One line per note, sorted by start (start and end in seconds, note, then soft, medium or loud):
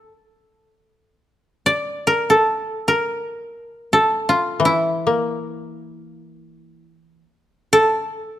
0.00 1.14 A4 medium
1.66 3.26 D5 medium
2.07 2.36 A#4 medium
2.30 2.94 A4 medium
2.88 3.99 A#4 medium
3.93 5.83 A4 medium
4.29 4.71 F4 medium
4.60 7.22 E3 medium
4.65 6.92 E4 medium
5.07 6.80 A#3 soft
7.73 8.39 A4 medium